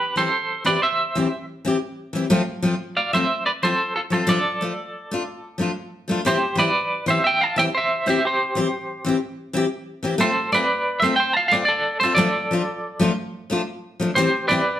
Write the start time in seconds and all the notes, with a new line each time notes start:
Already playing: G4 B4
0.16 E3 C4 E4 G4 A4 C5
0.65 E3 C4 E4 G4 B4 D5
0.82 C5 E5
1.15 E3 C4 E4 G4
1.65 E3 C4 E4 G4
2.13 E3 C4 E4 G4
2.30 F3 A3 C4 F4
2.62 F3 A3 C4 F4
2.97 D5 F5
3.13 F3 A3 C4 F4 C5 E5
3.46 B4 D5
3.63 F3 A3 C4 F4 A4 C5
3.96 F4 A4
4.10 F3 A3 C4 F4 A4 C5
4.27 F3 A3 D4 F4 A4 D5
4.61 F3 A3 F4
5.11 A3 D4 F4
5.58 F3 A3 D4 F4
6.08 F3 A3 D4 F4
6.25 E3 C4 E4 G4 C5
6.55 E3 C4 E4 G4 B4 D5
7.06 E3 C4 E4 G4 C5
7.10 E5
7.24 E5 G5
7.41 F5 A5
7.56 E3 C4 E4 G4 E5 G5
7.75 C5 E5
8.06 E3 C4 E4 G4 C5
8.10 E5
8.25 G4 C5
8.55 E3 C4 E4 G4
9.04 E3 C4 E4 G4
9.53 E3 C4 E4 G4
10.03 E3 C4 E4 G4
10.18 A3 C4 F4 A4 C5
10.52 A3 C4 F4 B4 D5
11.00 A3 C5 E5
11.04 C4 F4
11.16 C5 G5
11.33 F5 A5
11.48 A3 F5
11.52 C4 F4 D5
11.65 A4 D5
12.00 A3 C4 A4 C5
12.04 F4
12.15 F3 A3 D4 A4 D5
12.19 F4
12.51 F3 A3 D4 F4
12.99 F3 A3 D4 F4
13.50 F3 A3 D4 F4
14.00 F3 A3 D4, muted steel-string acoustic guitar stroke
14.15 E3 C4 E4 G4 C5
14.48 E3 C4 E4 B4 D5
14.53 G4